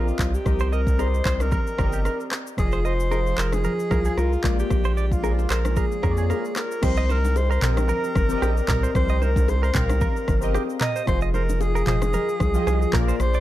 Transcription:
Already playing: A#1 C4 F4 G4 A#4 D5 D#5
0.08 shaker
0.19 C2, kick, cross-stick, clap, shaker
0.34 G4, shaker
0.45 C2 C4 G4 A#4 D#5, kick, cross-stick, low conga, shaker
0.59 C5, shaker
0.73 A#4 D#5, shaker
0.87 kick, shaker
0.98 C4 G4 A#4 C5 D5, high bongo, shaker
1.06 D#5
1.14 shaker
1.25 C2 C5, kick, clap, shaker
1.40 A#4, cross-stick, low bongo, shaker
1.52 A#4, kick, low conga, shaker
1.67 shaker
1.77 G1 C4 G4 A#4 D5, kick, cross-stick, low bongo, low conga, shaker
1.86 D#5
1.93 G4, shaker
2.05 A#4, cross-stick, high bongo, shaker
2.20 shaker
2.31 cross-stick, clap, shaker
2.47 shaker
2.57 F1 F3 F4 G#4 D5, kick, cross-stick, low conga, shaker
2.66 D#5
2.72 C5, shaker
2.85 C5 D#5, shaker
3.00 shaker
3.10 F3 F4 G#4 A#4 D#5, high bongo, shaker
3.27 shaker
3.38 F1 A#4 C5, clap, shaker
3.52 G#4, cross-stick, low bongo, shaker
3.64 A#4, low conga, shaker
3.79 shaker
3.90 C2 F3 F4 G#4 A#4, kick, cross-stick, low bongo, low conga, shaker
4.05 G#4, shaker
4.17 C2 F4 A#4, cross-stick, high bongo, shaker
4.33 shaker
4.43 A#1 G#3 A#3 F4 D5, kick, cross-stick, clap, shaker
4.59 G4, shaker
4.70 A#1, kick, cross-stick, low conga, shaker
4.84 C5, shaker
4.97 D5, shaker
5.12 F4, kick, shaker
5.22 A#3 F4 G#4 A#4 C5, high bongo, shaker
5.31 D5
5.39 high bongo, shaker
5.50 A#1 A#4 C5, clap, shaker
5.65 cross-stick, low bongo, shaker
5.76 G#4 A#4, kick, low conga, shaker
5.92 shaker
6.02 F2 A#3 F4 G#4 A#4 C#5, kick, cross-stick, low bongo, low conga, shaker
6.11 D5
6.17 G#4, shaker
6.30 A#4, cross-stick, high bongo, shaker
6.45 shaker
6.56 A#4, cross-stick, clap, high bongo, shaker
6.72 shaker
6.82 C2 C4 G4 A#4 C5 D#5, kick, cross-stick, crash, low conga, shaker
6.96 D#5, shaker
7.09 A#4 C5, low bongo, shaker
7.25 low bongo, shaker
7.36 C5, high bongo, shaker
7.51 A#4 C5, shaker
7.61 A#1 C4 G4 A#4 C5 D#5, clap, mid tom, shaker
7.77 cross-stick, low bongo, shaker
7.89 A#4, low conga, shaker
8.04 shaker
8.15 G1, kick, cross-stick, low bongo, low conga, shaker
8.29 C4 G4 A#4 D5, shaker
8.38 D#5
8.42 A#1 G4, cross-stick, high bongo, shaker
8.57 shaker
8.68 C2 A#4, kick, cross-stick, clap, mid tom, shaker
8.83 C5, shaker
8.94 C2 C4 G4 A#4 C5, kick, cross-stick, low conga, shaker
9.09 D#5, shaker
9.22 A#4 C5, low bongo, shaker
9.36 kick, low bongo, shaker
9.48 C5, high bongo, shaker
9.63 A#4 C5, shaker
9.73 C2 C4 G4 A#4 C5 F5, kick, clap, mid tom, shaker
9.89 cross-stick, low bongo, shaker
10.01 A#4, kick, low conga, shaker
10.16 shaker
10.28 G1, kick, cross-stick, low bongo, low conga, shaker
10.41 C4 G4 A#4 D#5, shaker
10.54 G4, cross-stick, high bongo, shaker
10.70 shaker
10.81 A#4 D#5, cross-stick, clap, mid tom, shaker
10.96 C5, shaker
11.06 F1 F3 F4 G#4 C5 D#5, kick, cross-stick, low conga, shaker
11.21 D#5, shaker
11.34 A#4 C5, low bongo, shaker
11.49 low bongo, shaker
11.61 G#4, high bongo, shaker
11.75 A#4, shaker
11.86 F1 F3 F4 G#4 C5 D#5, clap, mid tom, shaker
12.02 cross-stick, low bongo, shaker
12.13 A#4, low conga, shaker
12.29 shaker
12.40 C2, kick, cross-stick, low bongo, low conga, shaker
12.54 F3 F4 G4 D#5, shaker
12.62 G#4
12.67 C2 G#4, cross-stick, high bongo, shaker
12.82 shaker
12.92 A#1 A#3 F4 G#4 A#4 C#5, kick, cross-stick, clap, mid tom, shaker
13.01 D5
13.08 C5, shaker
13.20 A#1 C5, cross-stick, low conga, shaker
13.34 D5, shaker

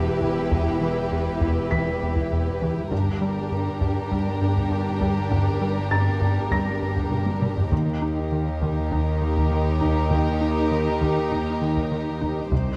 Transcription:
Already playing: E1 E2 E4 G4 B4 A5, impact
0.21 E3, taiko
0.51 E2, taiko
0.81 E3
1.12 E2
1.41 E2, taiko
1.71 E3 B6, taiko
2.03 E2
2.16 taiko
2.32 E2
2.61 E3, taiko
2.91 G1 G2 D4 G4 A#4, taiko
3.21 G3
3.52 G2
3.81 G2, taiko
4.11 G3, taiko
4.41 G2
4.57 taiko
4.71 G2
5.01 G3, taiko
5.31 G2, taiko
5.61 G3
5.91 G2 A#5 A6
6.21 G2, taiko
6.51 G3 A#6, taiko
6.82 G2
6.96 taiko
7.11 G2, taiko low-mid
7.26 taiko high
7.42 G3, taiko low-mid
7.57 taiko low
7.71 D#2 D#3 D#4 G4 A#4, taiko
8.02 D#4
8.32 D#3
8.61 D#3, taiko
8.91 D#4, taiko
9.22 D#3
9.37 taiko
9.51 D#3
9.81 D#4, taiko
10.11 D#3, taiko
10.41 D#4
10.71 D#3
11.01 D#3, taiko
11.32 D#4, taiko
11.62 D#3
11.77 taiko
11.92 D#3
12.21 D#4, taiko
12.51 C2 C3 D#4 G4 C5, taiko

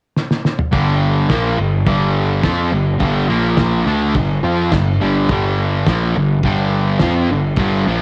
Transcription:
0.16 snare
0.31 snare
0.45 snare
0.59 mid tom
0.72 G1 G2 D3 G3, kick, crash
1.30 A#1 A#2 F3 A#3, kick, snare, crash
1.58 G1 G2 D3
1.86 G1 G2 D3 G3, kick, crash
2.43 F2 F3 C4 F4, kick, snare, crash
2.72 G1 G2 D3
2.99 G1 G2 D3 G3, kick, crash
3.28 A#1 A#2 F3 A#3
3.57 kick, snare, crash
3.86 D2 D3 A3 D4
4.14 G1 G2 D3, kick, crash
4.43 F2 F3 C4 F4
4.72 G1 G2 D3, kick, snare, crash
5.01 G1 G2 D3 G3
5.29 G1 G2 D3 G3, kick, crash
5.86 A#1 A#2 F3 A#3, kick, snare, crash
6.15 G1 G2 D3
6.43 G1 G2 D3 G3, kick, crash
6.99 F2 F3 C4 F4, kick, snare, crash
7.29 G1 G2 D3
7.56 G1 G2 D3 G3, kick, crash
7.87 A#1 A#2 F3 A#3

